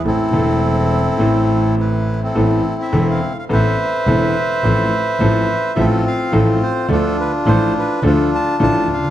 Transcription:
<<
  \new Staff \with { instrumentName = "Bandoneon" } { \time 4/4 \key a \minor \tempo 4 = 105 << { a'2. b'8. a'16~ | a'8. e''8 f''8 f''16 e''2~ | e''2 a'8 f''8 a'8 c''8 | a'8 b'8 c''8 b'8 a'8 a''8 a''8 f''8 | } \\ { <c' e'>2. e'8. <c' e'>16~ | <c' e'>4.~ <c' e'>16 r16 <b' c''>2~ | <b' c''>2 <c' f'>2 | <d' f'>2 <d' f'>2 | } >> }
  \new Staff \with { instrumentName = "Grand piano" } { \clef bass \time 4/4 \key a \minor <a,, a, e a c' a'>8 <e,, e, e a c' a'>4. <a,, a, e a c' a'>2 | <a,, a, e b c' a'>8 r8 <e,, e, e b c' a'>8 r8 <a,, a, e b c' a'>8 r8 <e,, e, e b c' a'>8 r8 | <a,, a, f a c' a'>8 r8 <a,, a, f a c' a'>8 r8 <a,, a, f a c' a'>8 r8 <a,, a, f a c' a'>8 r8 | <d, d f a d' a'>8 r8 <a,, a, f a d' a'>8 r8 <d, d f a d' a'>8 r8 <a,, a, f a d' a'>8 r32 cis,32 d,32 r32 | }
  \new Staff \with { instrumentName = "Double bass" } { \clef bass \time 4/4 \key a \minor a,,8 e,,4. a,,2 | a,,8 r8 e,,8 r8 a,,8 r8 e,,8 r8 | a,,8 r8 a,,8 r8 a,,8 r8 a,,8 r8 | d,8 r8 a,,8 r8 d,8 r8 a,,8 d,8 | }
>>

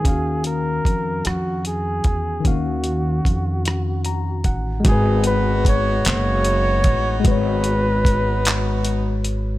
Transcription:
<<
  \new Staff \with { instrumentName = "Flugelhorn" } { \time 6/8 \key gis \dorian \tempo 4. = 50 gis'8 ais'4 fis'8 gis'4 | fis'2~ fis'8 r8 | gis'8 b'8 cis''8 cis''4. | b'2~ b'8 r8 | }
  \new Staff \with { instrumentName = "Tine electric piano" } { \time 6/8 \key gis \dorian << { r2. | r2 ais''8 fis''8 | r2. | r2. | } \\ { <dis cis' fis' eis''>2. | <dis cis' fis' eis''>2. | <gis fis' gis' b'>2. | <gis fis' b' cis''>2. | } >> }
  \new Staff \with { instrumentName = "Horn section" } { \time 6/8 \key gis \dorian r2. | r2. | <b dis' fis'>2.~ | <b dis' fis'>2~ <b dis' fis'>8 r8 | }
  \new Staff \with { instrumentName = "Upright bass" } { \clef bass \time 6/8 \key gis \dorian dis,4 eis,8 eis,4 e,8 | dis,4 eis,4. a,,8 | gis,,4. fis,,4 a,,8 | gis,,2. | }
  \new DrumStaff \with { instrumentName = "Drums" } \drummode { \time 6/8 <hh bd>8 hh8 <hh bd>8 <hh ss>8 hh8 <hh bd>8 | <hh bd>8 hh8 <hh bd>8 <hh ss>8 hh8 <hh bd>8 | <hh bd>8 hh8 <hh bd>8 <hc hh>8 hh8 <hh bd>8 | <hh bd>8 hh8 <hh bd>8 <hc hh>8 hh8 hh8 | }
>>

